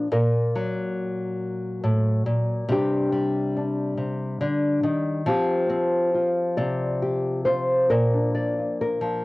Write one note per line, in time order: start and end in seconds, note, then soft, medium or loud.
0.12 1.83 A#2 medium
0.12 2.64 A#4 medium
0.55 2.64 F#3 medium
1.84 2.26 A2 medium
2.26 2.69 A#2 medium
2.69 3.96 C3 medium
2.69 3.12 G3 medium
2.69 3.55 D4 medium
2.69 5.27 G4 medium
3.12 5.21 G3 medium
3.57 5.22 D4 medium
3.97 4.40 C3 soft
4.41 4.83 D3 medium
4.83 5.26 D#3 medium
5.26 9.00 F3 medium
5.26 5.68 C4 medium
5.26 6.14 F4 medium
5.26 6.57 G4 medium
5.70 7.85 C4 medium
6.15 7.46 F4 soft
6.57 7.91 C3 medium
6.57 7.02 D5 medium
7.02 7.45 G4 medium
7.45 7.86 F4 soft
7.45 7.89 C5 medium
7.90 9.24 A#2 medium
7.90 8.34 A#4 medium
8.13 9.25 D4 soft
8.35 8.80 D5 medium
8.59 9.25 F4 soft
8.81 9.25 A#4 medium
9.01 9.25 F3 soft